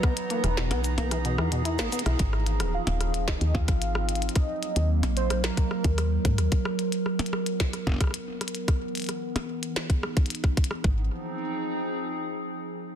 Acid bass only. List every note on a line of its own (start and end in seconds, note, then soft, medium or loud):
0.03 0.14 B3 medium
0.30 0.43 A#3 medium
0.44 0.50 E3 medium
0.57 0.70 B2 medium
0.71 0.82 B3 medium
0.98 1.11 A#3 medium
1.11 1.18 E3 medium
1.25 1.38 B2 medium
1.38 1.49 E3 medium
1.52 1.63 B2 medium
1.65 1.78 E4 loud
1.79 1.90 A#3 loud
1.92 2.03 B3 medium
2.06 2.19 E4 medium